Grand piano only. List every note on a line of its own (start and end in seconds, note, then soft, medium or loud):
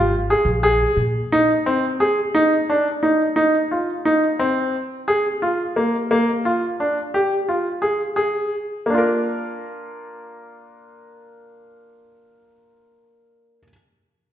0.00 0.13 F4 soft
0.30 0.48 G#4 medium
0.63 0.99 G#4 medium
1.32 1.50 D#4 medium
1.66 1.84 C4 medium
2.00 2.18 G#4 medium
2.35 2.52 D#4 medium
2.70 2.87 D4 medium
3.03 3.21 D#4 medium
3.36 3.54 D#4 medium
3.71 3.89 F4 soft
4.05 4.23 D#4 medium
4.39 4.75 C4 medium
5.08 5.26 G#4 medium
5.42 5.60 F4 medium
5.76 5.94 A#3 soft
6.11 6.29 A#3 medium
6.45 6.63 F4 medium
6.80 6.98 D4 soft
7.14 7.32 G4 medium
7.49 7.66 F4 soft
7.82 8.00 G#4 soft
8.16 8.53 G#4 soft
8.86 13.59 A#3 soft
8.86 13.63 D4 soft
8.94 13.67 F4 soft
8.94 13.71 A#4 soft